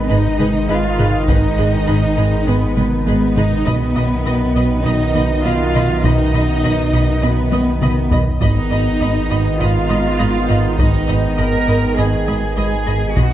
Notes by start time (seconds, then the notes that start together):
Already playing: G#1 G#2 D#3 G#3 D#4 D#5, impact
0.09 G#1 G#2 D#4 G#4 B4 D#5 B5
0.39 G#1 G#3 G#4 B4 D#5 B5, taiko mid
0.69 G#1 G#3 F4 G#4 B4 D#5 F5 B5
0.99 G#1 G#2 G#4 B4 D#5 B5, taiko mid
1.28 G#1 G#2 D#4 G#4 B4 D#5 B5, taiko
1.57 G#1 G#2 G#4 B4 D#5 B5
1.87 G#1 G#2 G#4 B4 D#5 B5
2.17 G#1 G#2 G#4 B4 D#5 B5
2.47 G#1 G#2 B3 G#4 B4 D#5 B5
2.76 G#1 G#3 G#4 B4 D#5 B5, taiko mid
3.07 G#1 G#3 B3 G#4 B4 D#5 B5
3.36 G#1 G#2 D#4 G#4 B4 D#5 B5, taiko mid
3.66 B1 F#2 B2 D#3 B3 D#4 B4 D#5 B5, taiko
3.96 B1 B2 D#5 B5
4.26 B1 B2 D#5 B5
4.56 B1 B2 D#5 B5
4.84 B1 B2 D#4 D#5 B5
5.15 B1 B3 D#5 B5, taiko mid
5.45 B1 B3 F4 D#5 F5 B5
5.74 B1 B2 D#5 B5, taiko mid
6.04 B1 B2 D#4 D#5 B5, taiko
6.34 B1 B2 D#5 B5
6.63 B1 B2 D#5 B5
6.93 B1 B2 D#5 B5
7.23 B1 B2 B3 B4 D#5 B5
7.52 B1 B3 D#5 B5, taiko high
7.82 B1 B3 B4 D#5 B5, taiko mid
8.11 B1 B2 D#5 B5, taiko low
8.41 G#1 G#2 D#3 B3 D#4 D#5 B5, taiko
8.71 G#1 G#2 D#5 B5
9.01 G#1 G#2 D#5 B5
9.30 G#1 G#2 D#5 B5
9.60 G#1 G#2 F4 D#5 F5 B5
9.89 G#1 G#3 D#5 B5
10.19 G#1 G#3 D#5 B5
10.49 G#1 G#2 D#5 B5
10.79 G#1 G#2 D#4 D#5 B5, taiko
11.08 G#1 G#2 D#5 B5
11.38 G#1 G#2 A#4 D#5 A#5 B5
11.68 G#1 G#2 D#5 B5
11.97 G#1 G#2 G#4 D#5 G#5 B5
12.27 G#1 G#3 D#5 B5
12.57 G#1 G#3 G#4 D#5 G#5 B5
12.87 G#1 G#2 D#5 B5
13.16 B1 F#2 B2 D#3 B3 D#4 F#4 D#5 F#5 B5, taiko